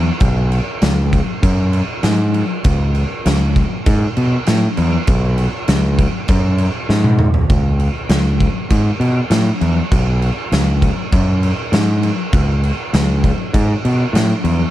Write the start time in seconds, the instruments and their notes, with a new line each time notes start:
0.20 fingered electric bass B1, kick, crash
0.52 crash
0.82 fingered electric bass C#2, snare, crash
1.13 kick, crash
1.43 fingered electric bass F#2, kick, crash
1.73 crash
2.03 fingered electric bass G#2, snare, crash
2.34 crash
2.64 fingered electric bass C#2, kick, crash
2.95 crash
3.26 fingered electric bass C#2, snare, crash
3.56 kick, crash
3.86 fingered electric bass G#2, kick, crash
4.17 fingered electric bass B2, crash
4.46 fingered electric bass A2, snare, crash
4.77 fingered electric bass E2, crash
5.07 fingered electric bass B1, kick, crash
5.38 crash
5.68 fingered electric bass C#2, snare, crash
5.98 kick, crash
6.28 fingered electric bass F#2, kick, crash
6.58 crash
6.89 fingered electric bass G#2, snare
7.04 high tom
7.19 mid tom
7.34 floor tom
7.50 fingered electric bass C#2, kick, crash
7.79 crash
8.09 fingered electric bass C#2, snare, crash
8.40 kick, crash
8.70 fingered electric bass G#2, kick, crash
9.00 fingered electric bass B2, crash
9.30 fingered electric bass A2, snare, crash
9.61 fingered electric bass E2, crash
9.91 fingered electric bass B1, kick, crash
10.22 crash
10.52 fingered electric bass C#2, snare, crash
10.82 kick, crash
11.12 fingered electric bass F#2, kick, crash
11.43 crash
11.72 fingered electric bass G#2, snare, crash
12.03 crash
12.33 fingered electric bass C#2, kick, crash
12.63 crash
12.93 fingered electric bass C#2, snare, crash
13.24 kick, crash
13.53 fingered electric bass G#2, kick, crash
13.85 fingered electric bass B2, crash
14.13 fingered electric bass A2, snare, crash
14.44 fingered electric bass E2, crash